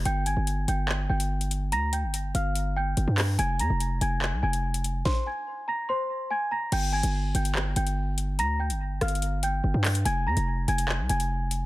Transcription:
<<
  \new Staff \with { instrumentName = "Celesta" } { \time 4/4 \key f \dorian \tempo 4 = 144 <g'' g'''>8 <aes'' aes'''>4 <g'' g'''>4 <g'' g'''>4. | <bes'' bes'''>8 <g'' g'''>4 <f'' f'''>4 <g'' g'''>4. | <aes'' aes'''>8 <bes'' bes'''>4 <aes'' aes'''>4 <aes'' aes'''>4. | <c'' c'''>8 <aes'' aes'''>4 <bes'' bes'''>8 <c'' c'''>4 <aes'' aes'''>8 <bes'' bes'''>8 |
<g'' g'''>8 <aes'' aes'''>4 <g'' g'''>4 <g'' g'''>4. | <bes'' bes'''>8 <g'' g'''>4 <f'' f'''>4 <g'' g'''>4. | <aes'' aes'''>8 <bes'' bes'''>4 <aes'' aes'''>4 <aes'' aes'''>4. | }
  \new Staff \with { instrumentName = "808-style bass" } { \clef bass \time 4/4 \key f \dorian g,,8. g,,8. g,,4 g,,4. | d,8. g,,8. g,,4. g,,16 g,8. | f,,8 f,16 f,,8. f,,8. c,16 f,,4. | r1 |
g,,8. g,,8. g,,4 g,,4. | d,8. g,,8. g,,4. g,,16 g,8. | f,,8 f,16 f,,8. f,,8. c,16 f,,4. | }
  \new DrumStaff \with { instrumentName = "Drums" } \drummode { \time 4/4 hh8 hh8 hh8 hh8 hc8. hh16 r16 hh16 hh8 | hh8 hh8 hh8 hh8 hh4 hh8 <hc hho>8 | hh8 hh8 hh8 hh8 hc8. hh16 r16 hh16 hh8 | <bd sn>4 r4 r4 r4 |
<cymc hh>8. hh16 r8 hh16 hh16 hc8 hh16 hh16 r8 hh8 | hh8. hh16 \tuplet 3/2 { r16 r16 r16 <hh ss>16 hh16 hh16 } hh8 hh8 r8 <hc hho>16 hh16 | hh8. hh16 r8 hh16 hh16 hc8 hh16 hh16 r8 hh8 | }
>>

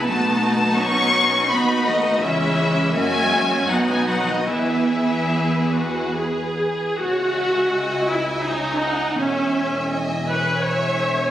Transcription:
<<
  \new Staff \with { instrumentName = "Violin section" } { \time 3/4 \key e \major \tempo 4 = 82 a''4 cis'''4 b''8 dis''8 | e''4 gis''4 fis''16 gis''16 fis''16 dis''16 | e''2 r4 | \key cis \minor cis''8 e''8 dis''4 cis''8 fis''8 |
e''4 dis''8 cis''8 e''4 | }
  \new Staff \with { instrumentName = "Violin section" } { \time 3/4 \key e \major <fis' b'>2 <fis' b'>4 | <e' e''>4 <fis' e''>4 <fis' b'>4 | <gis' b'>2~ <gis' b'>8. r16 | \key cis \minor <e'' gis''>2. |
<e'' gis''>2 <e'' gis''>4 | }
  \new Staff \with { instrumentName = "Viola section" } { \time 3/4 \key e \major << { dis'2 dis'4 | cis'4 cis'4 dis'4 | e'4. fis'8 gis'4 | \key cis \minor fis'4. e'8 dis'4 |
cis'4 r8 b'8 cis''4 | } \\ { b2 b8 a8 | gis4 ais4 b4 | b4. r4. | r2. |
r2. | } >> }
  \new Staff \with { instrumentName = "Cello section" } { \clef bass \time 3/4 \key e \major a4 cis'4 b8 dis8 | e4 gis4 fis16 gis16 fis16 dis16 | e2 r4 | \key cis \minor cis,2. |
e,2. | }
  \new Staff \with { instrumentName = "Double bass section" } { \clef bass \time 3/4 \key e \major b,,2 dis,4 | cis,4 fis,4 b,,4 | e,2~ e,8. r16 | \key cis \minor cis,2. |
e,,2. | }
>>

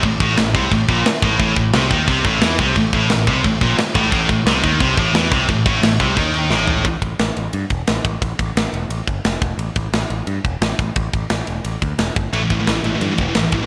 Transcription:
<<
  \new Staff \with { instrumentName = "Distorted electric guitar" } { \clef bass \time 4/4 \key a \phrygian \tempo 4 = 176 a,8 a,8 a,8 c8 a,8 bes,8 r8 a,8 | a,8 a,8 c8 dis8 c8 a,8 e8 c8 | a,8 a,8 a,8 c8 a,8 bes,8 r8 a,8 | a,8 a,8 c8 dis8 c8 a,8 e8 c8 |
a,8 a,8 a,8 c8 dis4 a,4 | r1 | r1 | r1 |
r1 | <a, e a>16 <a, e>16 <a, e>16 <a, e>16 <a, e>8 <a, e>16 <a, e>16 <a, e>16 <a, e>16 <a, e>16 <a, e>16 <a, e>8 <a, e>16 <a, e>16 | }
  \new Staff \with { instrumentName = "Picked electric bass" } { \clef bass \time 4/4 \key a \phrygian a,,8 a,,8 a,,8 c,8 a,,8 bes,,8 r8 a,,8 | a,,8 a,,8 c,8 dis,8 c,8 a,,8 e,8 c,8 | a,,8 a,,8 a,,8 c,8 a,,8 bes,,8 r8 a,,8 | a,,8 a,,8 c,8 dis,8 c,8 a,,8 e,8 c,8 |
a,,8 a,,8 a,,8 c,8 dis,4 a,,4 | a,,8 a,,8 a,,8 a,,8 g,8 e,,8 a,,8 a,,8 | a,,8 a,,8 a,,8 e,,8 a,,8 g,,8 f,,8 e,,8 | a,,8 a,,8 a,,8 a,,8 g,8 e,,8 a,,8 a,,8 |
a,,8 a,,8 a,,8 e,,8 a,,8 d,8 e,,8 g,,8 | a,,8 a,,8 a,,8 a,,8 g,8 e,,8 a,,8 a,,8 | }
  \new DrumStaff \with { instrumentName = "Drums" } \drummode { \time 4/4 <cymc bd>8 <cymc bd>8 <cymc sn>8 <cymc bd>8 <cymc bd>8 <cymc bd>8 <cymc sn>8 <cymc bd>8 | <cymc bd>8 <cymc bd>8 <cymc sn>8 <cymc bd>8 <cymc bd>8 <cymc bd>8 <cymc sn>8 <cymc bd>8 | <cymc bd>8 <cymc bd>8 <cymc sn>8 <cymc bd>8 <cymc bd>8 <cymc bd>8 <cymc sn>8 <cymc bd>8 | <cymc bd>8 <cymc bd>8 <cymc sn>8 <cymc bd>8 <cymc bd>8 <cymc bd>8 <cymc sn>8 <cymc bd>8 |
<cymc bd>8 <cymc bd>8 <cymc sn>8 <cymc bd>8 <cymc bd>8 cymc8 sn8 tomfh8 | <bd cymr>8 <bd cymr>8 <cymr sn>8 cymr8 cymr8 <bd cymr>8 <cymr sn>8 <bd cymr>8 | <bd cymr>8 <bd cymr>8 <cymr sn>8 cymr8 cymr8 <bd cymr>8 <cymr sn>8 <bd cymr>8 | cymr8 <bd cymr>8 <cymr sn>8 cymr8 cymr8 <bd cymr>8 <cymr sn>8 <bd cymr>8 |
<bd cymr>8 <bd cymr>8 <cymr sn>8 cymr8 cymr8 <bd cymr>8 <cymr sn>8 <bd cymr>8 | cymr8 <bd cymr>8 <cymr sn>8 cymr8 cymr8 <bd cymr>8 <cymr sn>8 <bd cymr>8 | }
>>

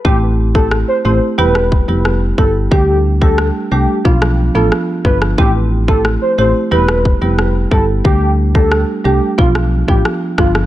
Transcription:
<<
  \new Staff \with { instrumentName = "Soft synth lead" } { \time 4/4 \key a \minor \tempo 4 = 90 g'16 r8 a'16 r16 c''16 c''16 r16 b'8. r8. a'16 r16 | g'8 r16 a'8 r16 g'8 f'16 r8 a'16 r8 b'16 r16 | g'16 r8 a'16 r16 c''16 c''16 r16 b'8. r8. a'16 r16 | g'8 r16 a'8 r16 g'8 f'16 r8 g'16 r8 f'16 r16 | }
  \new Staff \with { instrumentName = "Marimba" } { \time 4/4 \key a \minor <a c' e' g'>16 r8 <a c' e' g'>16 r8 <a c' e' g'>16 r16 <g b e' g'>8. <g b e' g'>16 r8 <g b e' g'>16 r16 | <g a d' g'>16 r8 <g a d' g'>8. <g a d' g'>8 <f b d' f'>16 r8 <f b d' f'>16 r8 <f b d' f'>16 r16 | <a c' e' g'>16 r8 <a c' e' g'>16 r8 <a c' e' g'>16 r16 <g b e' g'>8. <g b e' g'>16 r8 <g b e' g'>16 r16 | <g a d' g'>16 r8 <g a d' g'>8. <g a d' g'>8 <f b d' f'>16 r8 <f b d' f'>16 r8 <f b d' f'>16 r16 | }
  \new Staff \with { instrumentName = "FM bass" } { \clef bass \time 4/4 \key a \minor a,,4~ a,,16 r16 a,,16 r16 e,,8. f,,8. g,,8 | d,4~ d,16 r16 c,16 r16 b,,8. a,,16 r8 g,,8 | a,,4~ a,,16 r16 a,,16 r16 e,,8. f,,8. g,,8 | d,4~ d,16 r16 c,16 r16 b,,8. a,,16 r8 g,,8 | }
  \new DrumStaff \with { instrumentName = "Drums" } \drummode { \time 4/4 bd8. bd16 ss4 r16 ss16 bd8 ss8 bd8 | bd8. bd16 ss4 bd16 ss8. ss8 bd16 ss16 | bd8. bd16 ss4 r16 ss16 bd8 ss8 bd8 | bd8. bd16 ss4 bd16 ss8 bd16 ss8 <bd ss>16 ss16 | }
>>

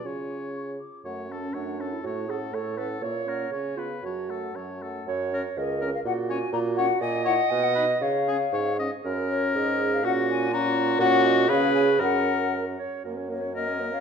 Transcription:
<<
  \new Staff \with { instrumentName = "Flute" } { \time 2/4 \key fis \minor \tempo 4 = 120 gis''4 cis'''8 d'''8 | fis''8 a''8 fis''8 a''8 | a''8 fis''8 a''8 fis''8 | e''8 fis''8 gis''8 eis''8 |
a''8 fis''8 a''8 fis''8 | \key fis \major r8 cis''8 dis''8. eis''16 | fis''8 gis''8 ais''8 fis''8 | gis''8 fis''8 gis''16 fis''16 dis''8 |
eis''4. r8 | r8 cis''8 dis''8. eis''16 | fis''8 gis''8 ais''4 | fis''8 dis''8 eis''8 gis''8 |
fis''4 r4 | r8 cis''8 dis''8. eis''16 | }
  \new Staff \with { instrumentName = "Oboe" } { \time 2/4 \key fis \minor cis''4. r8 | cis''8 a'8 cis''8 a'8 | cis''8 a'8 cis''8 a'8 | cis''8 ais'8 cis''8 b'8 |
cis''8 a'8 cis''8 a'8 | \key fis \major r8 ais'8 r8 ais'8 | r8 cis''8 r8 cis''8 | r8 cis''8 r8 b'8 |
r8 gis'8 cis''8 dis''8 | ais'2 | fis'4 fis'4 | fis'4 b'4 |
ais'4. r8 | r4 ais'4 | }
  \new Staff \with { instrumentName = "Clarinet" } { \time 2/4 \key fis \minor eis'4. r8 | r8 cis'8 d'8. e'16 | fis'8 gis'8 a'8 b'8 | cis''4. eis'8 |
fis'4 r4 | \key fis \major cis''4 ais'4 | fis'4 fis'4 | dis''2 |
cis''4. r8 | ais'4 gis'4 | fis'4 eis'4 | fis'4 gis'4 |
ais'4 ais'8 cis''8 | ais'16 cis''16 ais'16 cis''16 ais'16 cis''16 ais'16 cis''16 | }
  \new Staff \with { instrumentName = "French horn" } { \time 2/4 \key fis \minor cis'4. r8 | a8 cis'8 a8 cis'8 | a8 cis'8 a8 cis'8 | ais8 cis'8 cis'8 b8 |
fis8 a8 fis8 a8 | \key fis \major r8 cis'8 r8 cis'8 | r8 cis'8 r8 cis'8 | r8 e'8 r8 dis'8 |
r8 cis'8 r8 cis'8 | cis'2 | cis'4 cis'4 | cis'4 cis'4 |
cis'4. r8 | ais16 cis'16 ais16 cis'16 ais16 cis'16 ais16 cis'16 | }
  \new Staff \with { instrumentName = "Bassoon" } { \clef bass \time 2/4 \key fis \minor cis4. r8 | fis,4 fis,4 | a,4 a,4 | ais,4 cis4 |
fis,4 fis,4 | \key fis \major fis,4 cis,4 | ais,4 ais,4 | ais,4 b,4 |
cis4 gis,4 | fis,4 gis,4 | ais,2 | ais,4 cis4 |
fis,4. r8 | fis,2 | }
>>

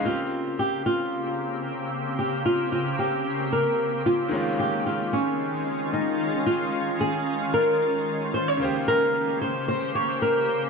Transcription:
<<
  \new Staff \with { instrumentName = "Nylon-string guitar" } { \time 4/4 \key bes \dorian \tempo 4 = 112 f'4 g'8 f'2 r8 | g'8 f'8 f'8 g'4 bes'4 f'8~ | f'8 g'8 f'8 des'4. ees'4 | f'4 aes'4 bes'4. c''16 des''16~ |
des''8 bes'4 c''8 c''8 des''8 bes'8. r16 | }
  \new Staff \with { instrumentName = "Ambient pad" } { \time 4/4 \key bes \dorian <des bes c' g'>1~ | <des bes c' g'>1 | <ees aes des' f'>1~ | <ees aes des' f'>1 |
<des bes g' c''>1 | }
  \new Staff \with { instrumentName = "Grand piano" } { \time 4/4 \key bes \dorian <des bes c' g'>1~ | <des bes c' g'>1 | <ees aes des' f'>1~ | <ees aes des' f'>1 |
<des bes g' c''>1 | }
>>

